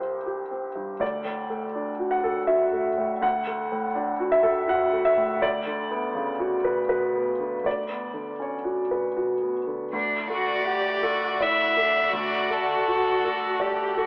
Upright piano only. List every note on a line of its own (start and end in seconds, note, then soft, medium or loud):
0.00 0.97 C2 soft
0.00 0.75 G2 soft
0.00 0.51 C4 soft
0.00 0.26 G4 soft
0.00 1.03 C5 soft
0.26 0.66 G4 soft
0.51 0.91 C4 soft
0.75 1.01 G2 soft
0.99 3.18 D2 soft
0.99 2.08 D5 soft
1.25 1.65 A2 soft
1.50 1.90 A3 soft
1.75 2.15 D4 soft
1.99 2.39 F#4 soft
2.11 2.46 F#5 soft
2.24 2.63 A4 soft
2.47 2.88 F#4 soft
2.47 3.18 E5 soft
2.73 3.13 A3 soft
2.97 3.37 A2 soft
3.21 5.37 D2 soft
3.21 4.28 F#5 medium
3.47 3.86 A3 soft
3.72 4.11 A2 soft
3.95 4.35 D4 soft
4.20 4.59 F#4 soft
4.32 4.66 E5 medium
4.43 4.83 A4 soft
4.68 5.07 F#4 soft
4.68 5.03 F#5 medium
4.93 5.32 A3 soft
5.05 5.39 E5 medium
5.17 5.42 A2 soft
5.42 7.61 D2 soft
5.42 6.85 D5 medium
5.66 6.05 D3 soft
5.91 6.30 B3 soft
6.15 6.54 C#3 soft
6.39 6.79 F#4 soft
6.64 6.88 B4 soft
6.88 7.29 F#4 soft
6.88 7.61 B4 soft
7.14 7.55 B3 soft
7.39 7.80 D3 soft
7.64 9.89 D2 soft
7.64 8.38 D5 soft
7.89 8.31 B3 soft
8.13 8.56 D3 soft
8.40 8.81 C#4 soft
8.40 9.52 C#5 soft
8.64 9.06 F#4 soft
8.91 9.32 B4 soft
9.17 9.58 F#4 soft
9.41 9.83 B3 soft
9.67 9.93 D3 soft
9.93 12.10 D2 soft
10.30 10.89 A3 soft
10.65 11.26 F#5 soft
11.02 11.63 A4 soft
11.41 12.00 D5 soft
11.77 12.36 A4 soft
12.13 14.06 D2 soft
12.50 13.09 A3 soft
12.88 13.46 F#4 soft
13.25 13.83 A4 soft
13.60 14.06 D5 soft
13.97 14.06 A4 soft